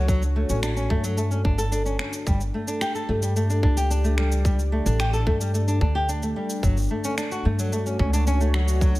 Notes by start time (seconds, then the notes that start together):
Already playing: C#2 A3 D4 F#4 C#5
0.08 F#3, kick, cabasa
0.22 cabasa
0.36 A3
0.49 A1 C#4, cabasa
0.63 D4, finger snap, cabasa
0.77 C#4, cabasa
0.90 G2 A3, kick
1.04 F#3, cabasa
1.17 A3, cabasa
1.31 C#4, cabasa
1.44 G1 D4, kick
1.58 A4, cabasa
1.72 D4, cabasa
1.86 C#4, cabasa
1.99 C#4, finger snap
2.13 cabasa
2.27 G1 G3, kick, cabasa
2.41 cabasa
2.49 A3
2.54 A3
2.62 G4
2.68 D4, cabasa
2.81 G4, finger snap, cabasa
2.95 A4, cabasa
3.09 G2 A3
3.22 G3, cabasa
3.36 A3, cabasa
3.48 D4 D5, cabasa
3.63 C#2 D4, kick
3.77 G4, cabasa
3.90 D4, cabasa
4.04 A3, cabasa
4.18 G3, finger snap
4.32 cabasa
4.45 G3, kick, cabasa
4.59 cabasa
4.72 A3
4.86 A1 D4, cabasa
5.00 G4, finger snap, cabasa
5.13 A4, cabasa
5.27 G2 A3, kick
5.41 G3, cabasa
5.54 A3, cabasa
5.68 D4, cabasa
5.81 D2 D4, kick
5.95 G4
6.09 D4, cabasa
6.23 A3, cabasa
6.36 G3
6.50 cabasa
6.63 G1 F#3, kick, cabasa
6.77 cabasa
6.80 cabasa
6.82 cabasa
6.84 cabasa
6.86 cabasa
6.88 A3, cabasa
7.04 C#4, cabasa
7.18 D4, finger snap, cabasa
7.31 F#4, cabasa
7.40 F#4
7.45 G2 A3
7.59 F#3 C#5, cabasa
7.72 A3, cabasa
7.86 C#4, cabasa
7.99 C#2 C#4, kick
8.13 D4, cabasa
8.27 C#4, cabasa
8.40 A3, cabasa
8.54 F#3, finger snap
8.68 cabasa
8.81 F#3, kick, cabasa
8.95 cabasa